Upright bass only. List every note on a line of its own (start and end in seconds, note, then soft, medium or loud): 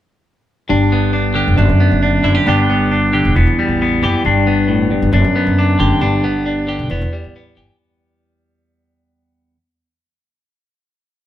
0.70 1.44 G1 medium
1.48 1.58 F1 medium
1.58 1.68 F#1 loud
1.69 1.90 F#2 medium
1.91 2.22 F#1 medium
2.24 2.35 F#1 medium
2.47 3.21 G1 loud
3.25 3.35 E1 medium
3.36 3.46 E1 medium
3.47 3.67 E2 medium
3.68 3.99 A1 medium
4.02 4.13 F#1 medium
4.25 4.98 G1 medium
5.02 5.12 G1 medium
5.13 5.23 F#1 loud
5.24 5.45 F#2 loud
5.47 5.77 F#1 medium
5.80 5.90 F#1 medium
6.01 6.75 G1 medium
6.79 6.89 B1 medium
6.90 7.00 E1 loud
7.01 7.22 E2 loud
7.24 7.54 A1 medium
7.57 7.67 G1 medium